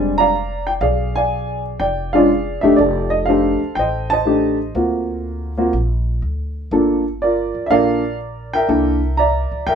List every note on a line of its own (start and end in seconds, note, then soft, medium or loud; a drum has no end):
0.00 0.77 F1 medium
0.00 0.30 G3 medium
0.00 0.29 G#3 medium
0.00 0.30 C4 medium
0.00 0.30 D4 medium
0.00 0.63 C5 medium
0.00 0.18 D5 medium
0.00 0.18 G#5 medium
0.18 0.79 D5 medium
0.18 0.79 F5 medium
0.18 0.63 A#5 loud
0.67 0.72 G5 medium
0.81 1.76 B1 medium
0.81 1.77 G#4 medium
0.81 1.16 D5 medium
0.81 1.13 F5 medium
1.16 1.79 D5 medium
1.16 2.11 F5 medium
1.16 1.61 G#5 loud
1.80 2.59 F1 medium
1.80 2.14 D5 medium
1.80 2.11 G5 medium
2.13 2.28 G#3 medium
2.13 2.28 C#4 medium
2.13 2.28 D4 medium
2.13 2.28 F4 medium
2.13 2.76 G#4 medium
2.13 2.75 D5 medium
2.13 2.64 F5 medium
2.61 2.78 E1 medium
2.61 2.77 A3 medium
2.61 2.77 D4 medium
2.61 2.77 D#4 medium
2.61 2.77 G4 medium
2.61 2.78 E5 medium
2.76 3.58 F1 medium
2.76 3.09 D5 medium
2.80 3.27 G4 medium
2.80 3.28 A4 medium
3.10 3.27 D#5 medium
3.26 3.58 A3 medium
3.26 3.59 D4 medium
3.26 3.59 D#4 medium
3.26 3.59 G4 medium
3.26 4.23 A4 medium
3.26 3.77 F5 medium
3.30 3.78 C5 medium
3.62 muted upright bass stroke soft
3.75 4.71 A1 medium
3.75 4.11 C5 medium
3.75 4.11 D#5 medium
3.75 4.08 G5 loud
4.10 4.72 C5 medium
4.10 4.72 D#5 medium
4.10 4.56 A5 loud
4.25 4.56 A3 medium
4.25 4.57 D4 medium
4.25 4.57 D#4 medium
4.25 4.57 G4 medium
4.75 5.69 D2 medium
4.75 5.52 A#3 medium
4.75 5.52 C4 medium
4.75 5.52 F4 medium
4.75 5.52 F#4 medium
5.58 5.72 A#3 medium
5.58 5.72 C4 medium
5.58 5.72 F4 medium
5.58 5.72 F#4 medium
5.73 6.19 A#1 medium
6.22 6.68 D2 medium
6.71 7.51 G1 medium
6.71 7.02 A#3 medium
6.71 7.03 D4 medium
6.71 7.03 F4 medium
6.71 7.03 A4 medium
7.22 7.69 F4 medium
7.22 7.70 A#4 medium
7.22 7.68 D5 medium
7.55 7.69 D2 medium
7.66 7.71 E5 medium
7.70 8.65 A#1 medium
7.70 8.01 A#3 medium
7.70 8.01 D4 medium
7.70 8.01 F4 medium
7.70 8.01 A4 medium
7.70 8.53 A#4 medium
7.70 8.65 D5 medium
7.70 8.16 F5 loud
8.53 9.48 A#4 medium
8.53 9.17 E5 medium
8.53 9.20 G5 loud
8.68 9.48 C2 medium
8.68 8.99 A#3 medium
8.68 8.99 D4 medium
8.68 8.99 E4 medium
8.68 8.99 A4 medium
9.17 9.75 D5 medium
9.17 9.67 E5 medium
9.17 9.63 A#5 medium
9.51 9.66 C#2 medium
9.67 9.75 G1 medium
9.67 9.75 A#4 medium
9.67 9.75 E5 medium
9.67 9.74 G5 loud